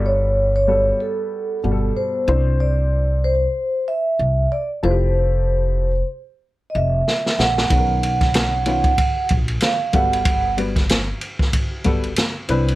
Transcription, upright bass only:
Already playing: G1
1.64 G1
2.28 C2
4.19 C2
4.83 F1
6.75 F1
7.39 A#1
7.71 B1
9.31 A#1
9.94 G1
11.86 G1
12.49 C2

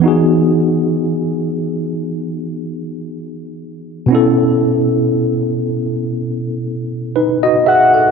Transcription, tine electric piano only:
0.00 E3 B3 D#4
0.06 F#4 G#4
4.06 B2 B3
4.10 C#4 E4
4.15 A4
7.16 D#4 B4
7.43 F#4 D#5
7.66 G#4 E5
7.94 A4 F#5

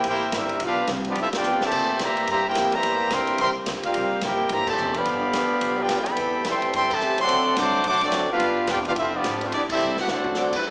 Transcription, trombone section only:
0.07 A#3 E4 G4
0.33 G3 A#3 E4
0.62 B3 D4 F4
1.08 F3 B3 D4
1.19 E4
1.35 B3 D4 G4
1.62 A#2 E3 A3
2.01 E3 G3 A#3
2.29 E3 G3 A#3
2.47 A#3 E4 G4
2.74 E3 G3 A#3
3.12 E3 G3 C4
3.40 E3 G3 C4
3.84 G3 A#3 F4
4.23 A#3 E4 G4
4.51 E3 G3 A#3
4.66 A#2 E3 A3
4.96 D3 F3 B3
5.79 B3 D4 G4
6.07 E3 G3 B3
6.46 E3 G3 C4
6.74 E3 G3 C4
6.91 C3 E3 A3
7.19 F#3 A3 C4
7.58 F#3 A3 D4
7.85 F#3 A3 D4
8.02 F#3 A3 D4
8.32 B3 D4 F4
8.70 B3 D4 G4
8.87 B3 D4 F4
8.97 E4
9.15 F3 B3 D4
9.44 C4
9.55 D4
9.71 G3 C4 E4
9.99 F#4
10.10 A3 C4 F#4

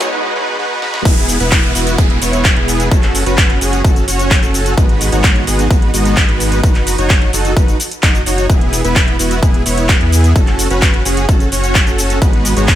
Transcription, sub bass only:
0.01 F#1
1.05 E1
1.40 E1
1.75 E1
1.98 E1
2.21 E1
2.56 E1
2.91 F#1
3.26 F#1
3.61 F#1
3.84 F#1
4.08 F#1
4.43 F#1
4.78 G#1
5.12 G#1
5.47 G#1
5.70 G#1
5.94 G#1
6.29 G#1
6.63 F#1
6.98 F#1
7.33 F#1
7.57 F#1
8.03 F#1
8.26 F#1
8.50 E1
8.84 E1
9.19 E1
9.43 E1
9.66 E1
10.01 E2
10.36 F#1
10.70 F#1
11.05 F#1
11.29 F#1
11.52 F#1
11.87 F#1
12.22 G#1
12.56 G#1

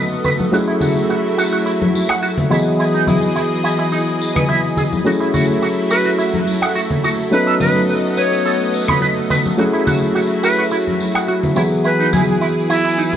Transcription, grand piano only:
Already playing: F#3 B3 C#4 D#4 A4
0.52 F#3 A3 C#4 E4 G#4
2.50 E3 F#3 B3 G#4 D#5
5.04 F#3 A3 C#4 E4 G#4
7.31 F#3 B3 C#4 D#4 A4
9.57 F#3 A3 C#4 E4 G#4
11.56 E3 F#3 B3 G#4

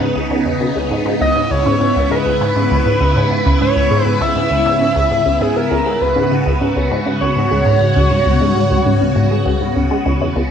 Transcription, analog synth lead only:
1.21 D#5
1.51 C#5
2.11 B4
3.62 C#5
4.05 B4
4.22 E5
5.42 G#4
5.57 A#4
6.02 B4
7.21 C#5

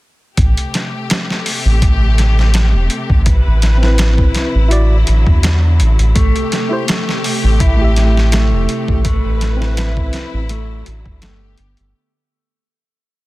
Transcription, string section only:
0.37 C3 A3 G4
3.27 E4 B4
4.71 D3 F#3
6.15 C3 A3 G4
9.04 E4 B4
10.49 D3 F#3
11.22 B3 G4

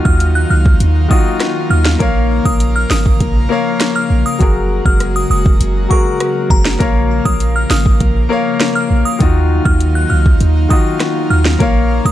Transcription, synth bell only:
0.05 F6
0.35 F#6
0.50 F6
1.11 D#6
1.71 F6
2.45 D#6
2.76 F6
2.90 D#6
3.96 F6
4.26 D#6
4.86 F6
5.16 D#6
5.31 D#6
5.91 C#6
6.51 A#5
7.25 D#6
7.56 F6
7.70 D#6
8.75 F6
9.05 D#6
9.65 F6
9.95 F#6
10.10 F6
10.70 D#6
11.30 F6
12.06 D#6

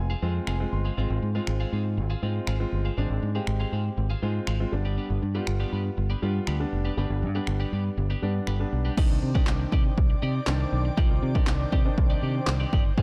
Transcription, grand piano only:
Already playing: G#5
0.22 G#3 C4 F4
0.48 G#5
0.60 G#3 C4 F4
0.73 C6
0.97 G#3 C4 F4
1.35 G#3 C4 F4
2.22 G#3 C4 F4
2.60 G#3 C4 F4
2.97 G#3 C4 D4
3.35 G#3 C4 G4
4.22 G#3 C4 F4
4.60 G#3 C4 F4
4.72 G3 B3 D4
5.35 G3 B3 F4
6.22 G3 B3 F4
6.60 G3 B3 D4
6.97 G3 B3 D4
7.35 G3 B3 D4
8.22 G3 B3 D4
8.60 G3 B3 D4
8.97 D#3 C4 D4
9.35 D#3 C4 D4
10.47 D#3 C4 D4
10.97 D#3 C4 F4
11.35 D#3 C4 D4
11.85 D#3 C4 D4
12.97 G#3 C4 F4

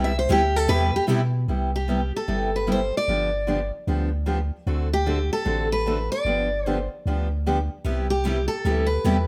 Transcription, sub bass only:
Already playing: C2
0.29 D2
0.69 E2
0.93 E2
1.08 B2
1.48 C2
2.28 G1
3.08 G1
3.87 D2
4.67 D2
5.46 A1
6.25 G1
7.06 D2
7.85 C2
8.65 D2
9.05 E2

